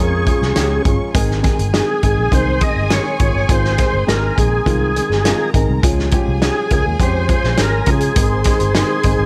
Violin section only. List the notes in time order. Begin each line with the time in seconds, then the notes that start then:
Already playing: C#4 C#6
1.14 G#4 G#5
5.24 A#4 A#5
5.83 G#4 G#5
8.16 C5 C6